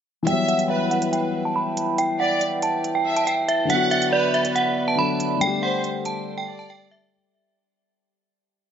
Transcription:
0.23 3.64 E3 medium
0.23 3.65 G3 medium
0.27 3.67 B3 medium
0.27 3.67 E4 medium
0.27 3.67 B4 medium
0.27 5.37 E5 medium
0.27 0.67 E5 loud
0.27 0.43 G5 loud
0.27 3.66 G5 medium
0.27 closed hi-hat medium
0.33 3.67 F#3 medium
0.49 0.65 F#5 medium
0.49 closed hi-hat medium
0.59 closed hi-hat medium
0.70 1.10 B4 medium
0.70 0.86 E5 medium
0.91 1.07 F#5 medium
0.91 closed hi-hat soft
1.02 closed hi-hat medium
1.13 1.43 G5 medium
1.13 closed hi-hat medium
1.45 1.53 A5 medium
1.56 1.96 B5 medium
1.77 closed hi-hat medium
1.98 2.15 G5 loud
1.98 closed hi-hat medium
2.20 2.40 D5 medium
2.20 2.36 F#5 medium
2.41 closed hi-hat medium
2.62 2.93 A5 medium
2.62 closed hi-hat medium
2.84 closed hi-hat medium
2.95 3.11 G5 medium
3.06 3.26 E5 medium
3.17 3.25 A5 medium
3.17 closed hi-hat medium
3.27 3.43 G5 medium
3.27 closed hi-hat medium
3.48 3.65 E5 medium
3.48 closed hi-hat medium
3.65 4.93 D3 medium
3.65 4.95 F#3 medium
3.70 5.40 B3 medium
3.70 4.97 B3 medium
3.70 5.40 B4 medium
3.70 5.40 D5 medium
3.70 4.10 F#5 loud
3.70 3.86 F#5 loud
3.70 closed hi-hat medium
3.75 4.98 F#4 medium
3.91 4.08 E5 medium
3.91 closed hi-hat medium
4.02 closed hi-hat medium
4.13 4.53 B4 medium
4.13 4.29 D5 medium
4.34 4.51 E5 medium
4.34 closed hi-hat soft
4.45 closed hi-hat medium
4.55 4.86 F#5 medium
4.55 closed hi-hat medium
4.88 4.96 A5 medium
4.95 5.36 D3 medium
4.95 5.41 F#3 soft
4.95 5.41 B3 soft
4.95 5.39 B5 medium
5.00 5.42 A4 medium
5.20 closed hi-hat medium
5.37 7.07 D3 medium
5.37 7.09 G3 medium
5.41 7.11 G3 medium
5.41 7.11 A3 medium
5.41 7.11 G4 medium
5.41 7.11 A4 medium
5.41 7.11 D5 medium
5.41 5.58 G5 loud
5.41 closed hi-hat medium
5.47 7.12 G4 medium
5.63 5.83 C5 medium
5.63 5.79 F#5 medium
5.84 closed hi-hat medium
6.05 6.36 A5 medium
6.05 closed hi-hat medium
6.38 6.54 G5 medium
6.48 7.09 D5 medium
6.59 6.67 A5 medium
6.70 6.86 G5 medium
6.91 7.08 E5 medium

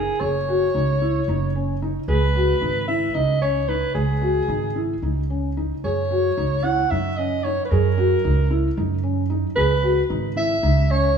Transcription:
0.00 0.11 D#4 medium
0.00 0.22 G#4 medium
0.21 0.66 F#1 medium
0.21 0.38 G#4 medium
0.21 1.81 C#5 medium
0.48 0.65 F#4 medium
0.74 1.19 C#2 medium
0.74 0.92 D#4 medium
1.02 1.18 E4 medium
1.28 1.95 F#1 medium
1.28 1.45 D#4 medium
1.55 1.72 C#4 medium
1.82 1.99 D#4 medium
2.08 2.53 C#2 medium
2.08 2.25 G#4 medium
2.08 2.84 B4 medium
2.36 2.52 F#4 medium
2.61 3.06 G#1 medium
2.61 2.78 D#4 medium
2.88 3.05 E4 medium
2.88 3.16 E5 medium
3.14 3.82 C#2 medium
3.14 3.31 D#4 medium
3.14 3.41 D#5 medium
3.42 3.58 C#4 medium
3.42 3.70 C#5 medium
3.68 3.85 D#4 medium
3.68 3.94 B4 medium
3.95 4.40 C#2 medium
3.95 4.98 G#4 medium
3.95 4.12 G#4 medium
4.22 4.38 F#4 medium
4.48 4.93 G#1 medium
4.48 4.66 D#4 medium
4.76 4.92 E4 medium
5.02 5.70 C#2 medium
5.02 5.20 D#4 medium
5.30 5.47 C#4 medium
5.57 5.74 D#4 medium
5.84 6.29 F#2 medium
5.84 6.01 G#4 medium
5.84 6.65 C#5 medium
6.11 6.27 F#4 medium
6.38 6.82 C#2 medium
6.38 6.54 D#4 medium
6.63 6.81 E4 medium
6.63 6.92 F#5 medium
6.91 7.58 F#2 medium
6.91 7.08 D#4 medium
6.91 7.19 E5 medium
7.17 7.35 C#4 medium
7.17 7.46 D#5 medium
7.44 7.61 D#4 medium
7.44 7.64 C#5 medium
7.65 7.72 B4 soft
7.70 8.15 F#2 medium
7.70 7.88 G#4 medium
7.70 8.77 A#4 medium
7.98 8.14 F#4 medium
8.24 8.68 C#2 medium
8.24 8.41 D#4 medium
8.51 8.67 E4 medium
8.77 9.43 F#2 medium
8.77 8.94 D#4 medium
9.03 9.20 C#4 medium
9.30 9.46 D#4 medium
9.56 10.01 C#2 medium
9.56 9.73 G#4 medium
9.56 10.05 B4 medium
9.83 9.99 F#4 medium
10.10 10.54 G#1 medium
10.10 10.26 D#4 medium
10.36 10.53 E4 medium
10.36 10.92 E5 medium
10.63 11.18 C#2 medium
10.63 10.80 D#4 medium
10.90 11.07 C#4 medium
10.90 11.17 C#5 medium

